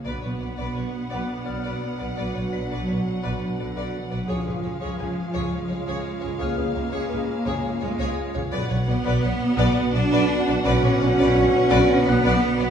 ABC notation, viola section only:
X:1
M:3/4
L:1/16
Q:1/4=85
K:none
V:1 name="Viola section"
B B B B B z B z B B z B | B B B B B z B z B B z B | ^G G G G G z G z G G z G | ^G G G G G z G z G G z G |
B B B B B z B z B B z B | B B B B B z B z B B z B |]